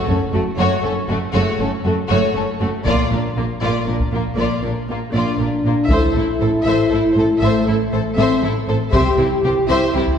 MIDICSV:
0, 0, Header, 1, 8, 480
1, 0, Start_track
1, 0, Tempo, 506329
1, 1271, Time_signature, 6, 3, 24, 8
1, 9654, End_track
2, 0, Start_track
2, 0, Title_t, "Violin section"
2, 0, Program_c, 0, 48
2, 63, Note_on_c, 0, 69, 38
2, 139, Note_off_c, 0, 69, 0
2, 319, Note_on_c, 0, 66, 44
2, 395, Note_off_c, 0, 66, 0
2, 554, Note_on_c, 0, 73, 66
2, 776, Note_off_c, 0, 73, 0
2, 796, Note_on_c, 0, 69, 48
2, 872, Note_off_c, 0, 69, 0
2, 1020, Note_on_c, 0, 66, 55
2, 1096, Note_off_c, 0, 66, 0
2, 1272, Note_on_c, 0, 73, 58
2, 1495, Note_off_c, 0, 73, 0
2, 1525, Note_on_c, 0, 69, 40
2, 1601, Note_off_c, 0, 69, 0
2, 1751, Note_on_c, 0, 66, 43
2, 1827, Note_off_c, 0, 66, 0
2, 2002, Note_on_c, 0, 73, 64
2, 2220, Note_off_c, 0, 73, 0
2, 2234, Note_on_c, 0, 69, 40
2, 2310, Note_off_c, 0, 69, 0
2, 2479, Note_on_c, 0, 66, 43
2, 2555, Note_off_c, 0, 66, 0
2, 2713, Note_on_c, 0, 74, 62
2, 2936, Note_off_c, 0, 74, 0
2, 2957, Note_on_c, 0, 70, 37
2, 3033, Note_off_c, 0, 70, 0
2, 3191, Note_on_c, 0, 65, 36
2, 3267, Note_off_c, 0, 65, 0
2, 3427, Note_on_c, 0, 74, 47
2, 3652, Note_off_c, 0, 74, 0
2, 3660, Note_on_c, 0, 70, 35
2, 3736, Note_off_c, 0, 70, 0
2, 3918, Note_on_c, 0, 65, 42
2, 3994, Note_off_c, 0, 65, 0
2, 4149, Note_on_c, 0, 74, 39
2, 4374, Note_off_c, 0, 74, 0
2, 4394, Note_on_c, 0, 70, 29
2, 4470, Note_off_c, 0, 70, 0
2, 4638, Note_on_c, 0, 65, 31
2, 4714, Note_off_c, 0, 65, 0
2, 4873, Note_on_c, 0, 74, 39
2, 5095, Note_off_c, 0, 74, 0
2, 5113, Note_on_c, 0, 70, 28
2, 5189, Note_off_c, 0, 70, 0
2, 5360, Note_on_c, 0, 65, 36
2, 5436, Note_off_c, 0, 65, 0
2, 5581, Note_on_c, 0, 76, 48
2, 5809, Note_off_c, 0, 76, 0
2, 5815, Note_on_c, 0, 69, 32
2, 5890, Note_off_c, 0, 69, 0
2, 6062, Note_on_c, 0, 72, 31
2, 6138, Note_off_c, 0, 72, 0
2, 6296, Note_on_c, 0, 76, 57
2, 6527, Note_off_c, 0, 76, 0
2, 6541, Note_on_c, 0, 69, 37
2, 6617, Note_off_c, 0, 69, 0
2, 6771, Note_on_c, 0, 72, 45
2, 6847, Note_off_c, 0, 72, 0
2, 7015, Note_on_c, 0, 76, 50
2, 7246, Note_off_c, 0, 76, 0
2, 7265, Note_on_c, 0, 69, 34
2, 7341, Note_off_c, 0, 69, 0
2, 7516, Note_on_c, 0, 72, 37
2, 7592, Note_off_c, 0, 72, 0
2, 7746, Note_on_c, 0, 76, 56
2, 7972, Note_off_c, 0, 76, 0
2, 7987, Note_on_c, 0, 69, 40
2, 8063, Note_off_c, 0, 69, 0
2, 8224, Note_on_c, 0, 72, 48
2, 8300, Note_off_c, 0, 72, 0
2, 8464, Note_on_c, 0, 76, 53
2, 8691, Note_off_c, 0, 76, 0
2, 8718, Note_on_c, 0, 67, 37
2, 8794, Note_off_c, 0, 67, 0
2, 8963, Note_on_c, 0, 72, 40
2, 9039, Note_off_c, 0, 72, 0
2, 9187, Note_on_c, 0, 76, 63
2, 9412, Note_off_c, 0, 76, 0
2, 9415, Note_on_c, 0, 67, 45
2, 9491, Note_off_c, 0, 67, 0
2, 9654, End_track
3, 0, Start_track
3, 0, Title_t, "Violin section"
3, 0, Program_c, 1, 48
3, 93, Note_on_c, 1, 61, 43
3, 168, Note_off_c, 1, 61, 0
3, 328, Note_on_c, 1, 57, 42
3, 404, Note_off_c, 1, 57, 0
3, 557, Note_on_c, 1, 66, 56
3, 777, Note_off_c, 1, 66, 0
3, 803, Note_on_c, 1, 61, 44
3, 878, Note_off_c, 1, 61, 0
3, 1047, Note_on_c, 1, 57, 55
3, 1122, Note_off_c, 1, 57, 0
3, 1269, Note_on_c, 1, 66, 59
3, 1493, Note_off_c, 1, 66, 0
3, 1527, Note_on_c, 1, 61, 38
3, 1603, Note_off_c, 1, 61, 0
3, 1768, Note_on_c, 1, 57, 45
3, 1844, Note_off_c, 1, 57, 0
3, 1979, Note_on_c, 1, 66, 55
3, 2208, Note_off_c, 1, 66, 0
3, 2226, Note_on_c, 1, 61, 43
3, 2302, Note_off_c, 1, 61, 0
3, 2466, Note_on_c, 1, 57, 50
3, 2542, Note_off_c, 1, 57, 0
3, 2720, Note_on_c, 1, 65, 59
3, 2939, Note_off_c, 1, 65, 0
3, 2951, Note_on_c, 1, 62, 38
3, 3027, Note_off_c, 1, 62, 0
3, 3198, Note_on_c, 1, 58, 38
3, 3274, Note_off_c, 1, 58, 0
3, 3426, Note_on_c, 1, 65, 48
3, 3652, Note_off_c, 1, 65, 0
3, 3671, Note_on_c, 1, 62, 33
3, 3747, Note_off_c, 1, 62, 0
3, 3936, Note_on_c, 1, 58, 39
3, 4012, Note_off_c, 1, 58, 0
3, 4168, Note_on_c, 1, 65, 37
3, 4384, Note_off_c, 1, 65, 0
3, 4395, Note_on_c, 1, 62, 31
3, 4471, Note_off_c, 1, 62, 0
3, 4654, Note_on_c, 1, 58, 33
3, 4730, Note_off_c, 1, 58, 0
3, 4879, Note_on_c, 1, 65, 39
3, 5099, Note_off_c, 1, 65, 0
3, 5119, Note_on_c, 1, 62, 32
3, 5194, Note_off_c, 1, 62, 0
3, 5372, Note_on_c, 1, 58, 31
3, 5448, Note_off_c, 1, 58, 0
3, 5606, Note_on_c, 1, 72, 52
3, 5822, Note_off_c, 1, 72, 0
3, 5855, Note_on_c, 1, 64, 33
3, 5931, Note_off_c, 1, 64, 0
3, 6084, Note_on_c, 1, 69, 37
3, 6160, Note_off_c, 1, 69, 0
3, 6334, Note_on_c, 1, 72, 55
3, 6547, Note_off_c, 1, 72, 0
3, 6579, Note_on_c, 1, 64, 37
3, 6655, Note_off_c, 1, 64, 0
3, 6817, Note_on_c, 1, 69, 45
3, 6893, Note_off_c, 1, 69, 0
3, 7053, Note_on_c, 1, 72, 50
3, 7266, Note_off_c, 1, 72, 0
3, 7280, Note_on_c, 1, 64, 38
3, 7356, Note_off_c, 1, 64, 0
3, 7531, Note_on_c, 1, 69, 42
3, 7607, Note_off_c, 1, 69, 0
3, 7768, Note_on_c, 1, 72, 58
3, 7984, Note_off_c, 1, 72, 0
3, 8002, Note_on_c, 1, 64, 39
3, 8078, Note_off_c, 1, 64, 0
3, 8232, Note_on_c, 1, 69, 49
3, 8308, Note_off_c, 1, 69, 0
3, 8462, Note_on_c, 1, 72, 60
3, 8689, Note_off_c, 1, 72, 0
3, 8708, Note_on_c, 1, 64, 38
3, 8784, Note_off_c, 1, 64, 0
3, 8952, Note_on_c, 1, 67, 45
3, 9028, Note_off_c, 1, 67, 0
3, 9192, Note_on_c, 1, 72, 69
3, 9415, Note_off_c, 1, 72, 0
3, 9447, Note_on_c, 1, 64, 47
3, 9522, Note_off_c, 1, 64, 0
3, 9654, End_track
4, 0, Start_track
4, 0, Title_t, "French horn section"
4, 0, Program_c, 2, 60
4, 4843, Note_on_c, 2, 62, 52
4, 5539, Note_off_c, 2, 62, 0
4, 5566, Note_on_c, 2, 64, 67
4, 7011, Note_on_c, 2, 57, 64
4, 7018, Note_off_c, 2, 64, 0
4, 7726, Note_off_c, 2, 57, 0
4, 7731, Note_on_c, 2, 60, 55
4, 7981, Note_off_c, 2, 60, 0
4, 8459, Note_on_c, 2, 67, 78
4, 9147, Note_off_c, 2, 67, 0
4, 9165, Note_on_c, 2, 64, 71
4, 9654, Note_off_c, 2, 64, 0
4, 9654, End_track
5, 0, Start_track
5, 0, Title_t, "Viola section"
5, 0, Program_c, 3, 48
5, 70, Note_on_c, 3, 57, 41
5, 146, Note_off_c, 3, 57, 0
5, 306, Note_on_c, 3, 57, 44
5, 382, Note_off_c, 3, 57, 0
5, 565, Note_on_c, 3, 57, 55
5, 782, Note_off_c, 3, 57, 0
5, 797, Note_on_c, 3, 57, 46
5, 873, Note_off_c, 3, 57, 0
5, 1037, Note_on_c, 3, 57, 47
5, 1113, Note_off_c, 3, 57, 0
5, 1278, Note_on_c, 3, 57, 61
5, 1498, Note_off_c, 3, 57, 0
5, 1511, Note_on_c, 3, 57, 41
5, 1587, Note_off_c, 3, 57, 0
5, 1767, Note_on_c, 3, 57, 44
5, 1843, Note_off_c, 3, 57, 0
5, 2002, Note_on_c, 3, 57, 64
5, 2220, Note_off_c, 3, 57, 0
5, 2249, Note_on_c, 3, 57, 46
5, 2325, Note_off_c, 3, 57, 0
5, 2475, Note_on_c, 3, 57, 47
5, 2551, Note_off_c, 3, 57, 0
5, 2721, Note_on_c, 3, 58, 59
5, 2940, Note_off_c, 3, 58, 0
5, 2965, Note_on_c, 3, 58, 40
5, 3041, Note_off_c, 3, 58, 0
5, 3199, Note_on_c, 3, 58, 39
5, 3275, Note_off_c, 3, 58, 0
5, 3447, Note_on_c, 3, 58, 46
5, 3663, Note_off_c, 3, 58, 0
5, 3683, Note_on_c, 3, 58, 36
5, 3759, Note_off_c, 3, 58, 0
5, 3915, Note_on_c, 3, 58, 38
5, 3991, Note_off_c, 3, 58, 0
5, 4149, Note_on_c, 3, 58, 49
5, 4373, Note_off_c, 3, 58, 0
5, 4396, Note_on_c, 3, 58, 27
5, 4472, Note_off_c, 3, 58, 0
5, 4640, Note_on_c, 3, 58, 25
5, 4716, Note_off_c, 3, 58, 0
5, 4875, Note_on_c, 3, 58, 43
5, 5097, Note_off_c, 3, 58, 0
5, 5108, Note_on_c, 3, 58, 31
5, 5184, Note_off_c, 3, 58, 0
5, 5351, Note_on_c, 3, 58, 34
5, 5426, Note_off_c, 3, 58, 0
5, 5597, Note_on_c, 3, 69, 53
5, 5817, Note_off_c, 3, 69, 0
5, 5846, Note_on_c, 3, 69, 33
5, 5922, Note_off_c, 3, 69, 0
5, 6080, Note_on_c, 3, 69, 39
5, 6156, Note_off_c, 3, 69, 0
5, 6315, Note_on_c, 3, 69, 52
5, 6537, Note_off_c, 3, 69, 0
5, 6547, Note_on_c, 3, 69, 41
5, 6623, Note_off_c, 3, 69, 0
5, 6804, Note_on_c, 3, 69, 40
5, 6879, Note_off_c, 3, 69, 0
5, 7043, Note_on_c, 3, 69, 51
5, 7261, Note_off_c, 3, 69, 0
5, 7282, Note_on_c, 3, 69, 36
5, 7358, Note_off_c, 3, 69, 0
5, 7510, Note_on_c, 3, 69, 38
5, 7586, Note_off_c, 3, 69, 0
5, 7755, Note_on_c, 3, 69, 58
5, 7976, Note_off_c, 3, 69, 0
5, 7995, Note_on_c, 3, 69, 45
5, 8071, Note_off_c, 3, 69, 0
5, 8238, Note_on_c, 3, 69, 46
5, 8314, Note_off_c, 3, 69, 0
5, 8478, Note_on_c, 3, 67, 52
5, 8698, Note_off_c, 3, 67, 0
5, 8726, Note_on_c, 3, 67, 45
5, 8802, Note_off_c, 3, 67, 0
5, 8967, Note_on_c, 3, 67, 41
5, 9043, Note_off_c, 3, 67, 0
5, 9210, Note_on_c, 3, 67, 56
5, 9425, Note_off_c, 3, 67, 0
5, 9439, Note_on_c, 3, 67, 46
5, 9515, Note_off_c, 3, 67, 0
5, 9654, End_track
6, 0, Start_track
6, 0, Title_t, "Cello section"
6, 0, Program_c, 4, 48
6, 81, Note_on_c, 4, 42, 49
6, 157, Note_off_c, 4, 42, 0
6, 312, Note_on_c, 4, 42, 42
6, 388, Note_off_c, 4, 42, 0
6, 552, Note_on_c, 4, 42, 59
6, 628, Note_off_c, 4, 42, 0
6, 788, Note_on_c, 4, 42, 45
6, 864, Note_off_c, 4, 42, 0
6, 1031, Note_on_c, 4, 42, 46
6, 1106, Note_off_c, 4, 42, 0
6, 1269, Note_on_c, 4, 42, 67
6, 1344, Note_off_c, 4, 42, 0
6, 1514, Note_on_c, 4, 42, 51
6, 1589, Note_off_c, 4, 42, 0
6, 1746, Note_on_c, 4, 42, 44
6, 1822, Note_off_c, 4, 42, 0
6, 1991, Note_on_c, 4, 42, 56
6, 2067, Note_off_c, 4, 42, 0
6, 2231, Note_on_c, 4, 42, 45
6, 2306, Note_off_c, 4, 42, 0
6, 2471, Note_on_c, 4, 42, 43
6, 2547, Note_off_c, 4, 42, 0
6, 2710, Note_on_c, 4, 46, 54
6, 2786, Note_off_c, 4, 46, 0
6, 2952, Note_on_c, 4, 46, 42
6, 3027, Note_off_c, 4, 46, 0
6, 3194, Note_on_c, 4, 46, 35
6, 3270, Note_off_c, 4, 46, 0
6, 3431, Note_on_c, 4, 46, 52
6, 3507, Note_off_c, 4, 46, 0
6, 3669, Note_on_c, 4, 46, 38
6, 3745, Note_off_c, 4, 46, 0
6, 3908, Note_on_c, 4, 46, 34
6, 3984, Note_off_c, 4, 46, 0
6, 4146, Note_on_c, 4, 46, 45
6, 4222, Note_off_c, 4, 46, 0
6, 4392, Note_on_c, 4, 46, 33
6, 4468, Note_off_c, 4, 46, 0
6, 4630, Note_on_c, 4, 46, 25
6, 4705, Note_off_c, 4, 46, 0
6, 4870, Note_on_c, 4, 46, 42
6, 4946, Note_off_c, 4, 46, 0
6, 5112, Note_on_c, 4, 46, 32
6, 5188, Note_off_c, 4, 46, 0
6, 5354, Note_on_c, 4, 46, 29
6, 5430, Note_off_c, 4, 46, 0
6, 5597, Note_on_c, 4, 45, 52
6, 5673, Note_off_c, 4, 45, 0
6, 5837, Note_on_c, 4, 45, 39
6, 5913, Note_off_c, 4, 45, 0
6, 6077, Note_on_c, 4, 45, 34
6, 6153, Note_off_c, 4, 45, 0
6, 6316, Note_on_c, 4, 45, 50
6, 6392, Note_off_c, 4, 45, 0
6, 6553, Note_on_c, 4, 45, 43
6, 6629, Note_off_c, 4, 45, 0
6, 6796, Note_on_c, 4, 45, 38
6, 6872, Note_off_c, 4, 45, 0
6, 7035, Note_on_c, 4, 45, 48
6, 7111, Note_off_c, 4, 45, 0
6, 7274, Note_on_c, 4, 45, 40
6, 7349, Note_off_c, 4, 45, 0
6, 7518, Note_on_c, 4, 45, 34
6, 7594, Note_off_c, 4, 45, 0
6, 7753, Note_on_c, 4, 45, 61
6, 7829, Note_off_c, 4, 45, 0
6, 7981, Note_on_c, 4, 45, 43
6, 8057, Note_off_c, 4, 45, 0
6, 8224, Note_on_c, 4, 45, 39
6, 8300, Note_off_c, 4, 45, 0
6, 8459, Note_on_c, 4, 48, 58
6, 8535, Note_off_c, 4, 48, 0
6, 8704, Note_on_c, 4, 48, 48
6, 8780, Note_off_c, 4, 48, 0
6, 8946, Note_on_c, 4, 48, 41
6, 9022, Note_off_c, 4, 48, 0
6, 9181, Note_on_c, 4, 48, 61
6, 9257, Note_off_c, 4, 48, 0
6, 9427, Note_on_c, 4, 48, 49
6, 9503, Note_off_c, 4, 48, 0
6, 9654, End_track
7, 0, Start_track
7, 0, Title_t, "Double bass section"
7, 0, Program_c, 5, 48
7, 76, Note_on_c, 5, 30, 44
7, 152, Note_off_c, 5, 30, 0
7, 316, Note_on_c, 5, 30, 47
7, 392, Note_off_c, 5, 30, 0
7, 548, Note_on_c, 5, 30, 64
7, 624, Note_off_c, 5, 30, 0
7, 802, Note_on_c, 5, 30, 45
7, 878, Note_off_c, 5, 30, 0
7, 1033, Note_on_c, 5, 30, 45
7, 1109, Note_off_c, 5, 30, 0
7, 1282, Note_on_c, 5, 30, 73
7, 1358, Note_off_c, 5, 30, 0
7, 1517, Note_on_c, 5, 30, 46
7, 1592, Note_off_c, 5, 30, 0
7, 1755, Note_on_c, 5, 30, 47
7, 1831, Note_off_c, 5, 30, 0
7, 1998, Note_on_c, 5, 30, 63
7, 2074, Note_off_c, 5, 30, 0
7, 2228, Note_on_c, 5, 30, 42
7, 2304, Note_off_c, 5, 30, 0
7, 2474, Note_on_c, 5, 30, 40
7, 2550, Note_off_c, 5, 30, 0
7, 2711, Note_on_c, 5, 34, 61
7, 2787, Note_off_c, 5, 34, 0
7, 2956, Note_on_c, 5, 34, 40
7, 3032, Note_off_c, 5, 34, 0
7, 3194, Note_on_c, 5, 34, 39
7, 3270, Note_off_c, 5, 34, 0
7, 3439, Note_on_c, 5, 34, 51
7, 3515, Note_off_c, 5, 34, 0
7, 3671, Note_on_c, 5, 34, 38
7, 3746, Note_off_c, 5, 34, 0
7, 3912, Note_on_c, 5, 34, 34
7, 3988, Note_off_c, 5, 34, 0
7, 4150, Note_on_c, 5, 34, 51
7, 4225, Note_off_c, 5, 34, 0
7, 4389, Note_on_c, 5, 34, 32
7, 4465, Note_off_c, 5, 34, 0
7, 4631, Note_on_c, 5, 34, 32
7, 4707, Note_off_c, 5, 34, 0
7, 4868, Note_on_c, 5, 34, 42
7, 4944, Note_off_c, 5, 34, 0
7, 5100, Note_on_c, 5, 34, 30
7, 5176, Note_off_c, 5, 34, 0
7, 5340, Note_on_c, 5, 34, 32
7, 5415, Note_off_c, 5, 34, 0
7, 5581, Note_on_c, 5, 33, 56
7, 5657, Note_off_c, 5, 33, 0
7, 5825, Note_on_c, 5, 33, 40
7, 5901, Note_off_c, 5, 33, 0
7, 6070, Note_on_c, 5, 33, 38
7, 6146, Note_off_c, 5, 33, 0
7, 6303, Note_on_c, 5, 33, 53
7, 6379, Note_off_c, 5, 33, 0
7, 6541, Note_on_c, 5, 33, 38
7, 6617, Note_off_c, 5, 33, 0
7, 6793, Note_on_c, 5, 33, 37
7, 6869, Note_off_c, 5, 33, 0
7, 7026, Note_on_c, 5, 33, 58
7, 7102, Note_off_c, 5, 33, 0
7, 7269, Note_on_c, 5, 33, 41
7, 7345, Note_off_c, 5, 33, 0
7, 7510, Note_on_c, 5, 33, 43
7, 7586, Note_off_c, 5, 33, 0
7, 7750, Note_on_c, 5, 33, 56
7, 7826, Note_off_c, 5, 33, 0
7, 7988, Note_on_c, 5, 33, 41
7, 8064, Note_off_c, 5, 33, 0
7, 8227, Note_on_c, 5, 33, 40
7, 8303, Note_off_c, 5, 33, 0
7, 8470, Note_on_c, 5, 36, 67
7, 8546, Note_off_c, 5, 36, 0
7, 8709, Note_on_c, 5, 36, 43
7, 8785, Note_off_c, 5, 36, 0
7, 8943, Note_on_c, 5, 36, 47
7, 9019, Note_off_c, 5, 36, 0
7, 9189, Note_on_c, 5, 36, 64
7, 9265, Note_off_c, 5, 36, 0
7, 9423, Note_on_c, 5, 36, 46
7, 9499, Note_off_c, 5, 36, 0
7, 9654, End_track
8, 0, Start_track
8, 0, Title_t, "Taiko and cinematic ensemble drums"
8, 2709, Note_on_c, 9, 41, 52
8, 2803, Note_off_c, 9, 41, 0
8, 3791, Note_on_c, 9, 41, 31
8, 3886, Note_off_c, 9, 41, 0
8, 5589, Note_on_c, 9, 41, 55
8, 5684, Note_off_c, 9, 41, 0
8, 8463, Note_on_c, 9, 41, 55
8, 8558, Note_off_c, 9, 41, 0
8, 9549, Note_on_c, 9, 41, 32
8, 9643, Note_off_c, 9, 41, 0
8, 9654, End_track
0, 0, End_of_file